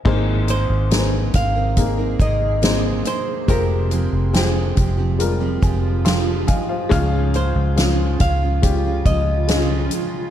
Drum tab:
CC |x-------|--------|--------|
HH |-xxxxxxx|xxxxxxxx|xxxxxxxx|
SD |--oo--o-|--o---o-|--oo--o-|
BD |o--ooo--|o--o-o-o|o--ooo--|